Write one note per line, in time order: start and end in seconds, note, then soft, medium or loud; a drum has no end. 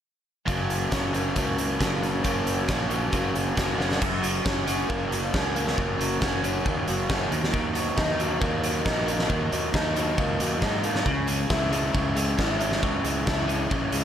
0.46 0.87 F#1 medium
0.46 1.35 F#2 medium
0.46 0.90 C#3 medium
0.46 0.91 F#3 medium
0.46 0.92 A#3 medium
0.46 0.93 C#4 medium
0.46 kick medium
0.46 closed hi-hat medium
0.70 closed hi-hat soft
0.91 1.32 F#1 medium
0.91 1.35 C#3 medium
0.91 1.15 F#3 medium
0.91 1.13 A#3 medium
0.91 1.13 C#4 medium
0.91 kick medium
0.91 snare medium
0.91 closed hi-hat medium
1.13 1.36 F#3 soft
1.13 1.36 A#3 medium
1.13 1.37 C#4 medium
1.13 closed hi-hat medium
1.36 1.76 C#2 medium
1.36 2.23 F#2 medium
1.36 1.78 C#3 medium
1.36 1.59 F#3 medium
1.36 1.58 A#3 medium
1.36 1.57 C#4 medium
1.36 kick medium
1.36 closed hi-hat medium
1.57 1.79 F#3 soft
1.57 1.80 A#3 medium
1.57 1.81 C#4 medium
1.57 closed hi-hat medium
1.79 2.20 F#1 medium
1.79 2.24 C#3 medium
1.79 2.24 F#3 medium
1.79 2.24 A#3 medium
1.79 2.24 C#4 medium
1.79 kick medium
1.79 snare loud
1.79 closed hi-hat medium
2.03 snare soft
2.03 closed hi-hat soft
2.24 2.64 F#1 medium
2.24 2.90 F#2 medium
2.24 2.67 C#3 medium
2.24 2.67 F#3 medium
2.24 2.68 A#3 medium
2.24 2.69 C#4 medium
2.24 kick medium
2.24 closed hi-hat medium
2.47 closed hi-hat medium
2.68 3.08 A#1 medium
2.68 3.12 C#3 medium
2.68 2.90 F#3 medium
2.68 2.90 A#3 medium
2.68 2.88 C#4 medium
2.68 kick medium
2.68 snare medium
2.68 closed hi-hat medium
2.90 3.12 F#3 medium
2.90 3.13 A#3 medium
2.90 3.14 C#4 medium
2.90 closed hi-hat soft
3.13 3.52 F#1 medium
3.13 3.57 F#2 medium
3.13 3.53 C#3 medium
3.13 3.35 F#3 medium
3.13 3.34 A#3 medium
3.13 3.33 C#4 loud
3.13 kick medium
3.13 closed hi-hat medium
3.34 3.55 F#3 soft
3.34 3.55 A#3 medium
3.34 3.56 C#4 medium
3.34 closed hi-hat soft
3.55 3.77 F#1 medium
3.55 3.76 C#3 medium
3.55 3.77 F#3 medium
3.55 3.77 A#3 medium
3.55 3.76 C#4 medium
3.55 kick loud
3.55 snare medium
3.55 closed hi-hat medium
3.77 3.98 F#1 medium
3.77 4.00 F#2 medium
3.77 3.99 C#3 medium
3.77 3.99 F#3 medium
3.77 3.99 A#3 medium
3.77 3.99 C#4 medium
3.77 snare soft
3.92 snare medium
4.01 4.41 F#1 medium
4.01 5.11 F#2 medium
4.01 kick medium
4.01 crash medium
4.22 4.66 F#3 medium
4.22 closed hi-hat medium
4.45 4.85 F#1 medium
4.45 5.33 C#4 medium
4.45 kick loud
4.45 snare medium
4.66 5.11 F#3 medium
4.66 closed hi-hat medium
4.89 5.29 F#1 medium
4.89 5.54 A#3 medium
4.89 kick loud
5.11 5.99 F#3 medium
5.11 closed hi-hat medium
5.34 5.73 C#2 medium
5.34 6.20 C#4 medium
5.34 kick loud
5.34 snare loud
5.55 6.64 A#3 medium
5.55 closed hi-hat medium
5.67 snare medium
5.77 5.97 F#1 medium
5.77 6.87 F#2 medium
5.77 kick medium
5.99 6.19 F#1 medium
5.99 6.43 F#3 medium
5.99 closed hi-hat medium
6.21 6.61 F#1 medium
6.21 7.09 C#4 medium
6.21 kick medium
6.21 snare loud
6.44 6.87 F#3 medium
6.44 closed hi-hat medium
6.64 6.85 D#2 medium
6.64 8.40 A#3 medium
6.64 kick loud
6.87 7.07 F#1 medium
6.87 7.74 F#3 medium
6.87 closed hi-hat medium
7.10 7.29 F#1 medium
7.10 7.32 C#4 medium
7.10 kick loud
7.10 snare loud
7.31 7.90 D#2 medium
7.31 7.52 D#3 medium
7.31 closed hi-hat medium
7.44 snare medium
7.53 8.63 D#3 medium
7.53 kick medium
7.74 8.18 F#3 medium
7.74 closed hi-hat medium
7.96 8.37 D#2 medium
7.96 8.84 D#4 medium
7.96 kick medium
7.96 snare loud
8.19 8.62 F#3 medium
8.19 closed hi-hat medium
8.41 8.81 D#2 medium
8.41 9.05 A#3 medium
8.41 kick loud
8.63 9.50 F#3 medium
8.63 closed hi-hat medium
8.85 9.25 A#1 medium
8.85 9.73 D#4 medium
8.85 kick loud
8.85 snare loud
9.07 10.17 A#3 medium
9.07 closed hi-hat medium
9.19 snare medium
9.29 9.49 D#2 medium
9.29 10.40 D#3 medium
9.29 kick medium
9.52 9.72 D#2 medium
9.52 9.95 F#3 medium
9.52 closed hi-hat medium
9.74 10.13 D#2 medium
9.74 10.60 D#4 medium
9.74 kick loud
9.74 snare loud
9.96 10.39 F#3 medium
9.96 closed hi-hat medium
10.18 10.38 C#2 medium
10.18 10.83 A#3 medium
10.18 kick loud
10.39 10.62 D#2 medium
10.39 11.06 F#3 medium
10.39 closed hi-hat medium
10.62 11.02 G#2 medium
10.62 11.06 D#4 medium
10.62 kick loud
10.62 snare loud
10.84 11.06 A#3 medium
10.84 closed hi-hat medium
10.95 snare medium
11.06 11.45 C#2 medium
11.06 12.17 C#3 medium
11.06 kick medium
11.27 11.71 G#3 medium
11.27 closed hi-hat medium
11.50 11.90 C#2 medium
11.50 12.36 E4 medium
11.50 kick loud
11.50 snare loud
11.72 12.15 G#3 medium
11.72 closed hi-hat medium
11.93 12.34 C#2 medium
11.93 12.59 C#4 medium
11.93 kick loud
12.16 13.03 G#3 medium
12.16 closed hi-hat medium
12.38 12.78 G#1 medium
12.38 13.25 E4 medium
12.38 kick loud
12.38 snare loud
12.60 13.68 C#4 medium
12.60 closed hi-hat medium
12.72 snare medium
12.82 13.03 C#2 medium
12.82 13.93 C#3 medium
12.82 kick medium
13.04 13.24 C#2 medium
13.04 13.46 G#3 medium
13.04 closed hi-hat medium
13.26 13.67 C#2 medium
13.26 14.04 E4 medium
13.26 kick loud
13.26 snare loud
13.48 13.92 G#3 medium
13.48 closed hi-hat medium
13.70 13.91 A#1 medium
13.70 14.04 C#4 medium
13.70 kick medium
13.92 14.04 C#2 medium
13.92 14.04 G#3 medium
13.92 closed hi-hat medium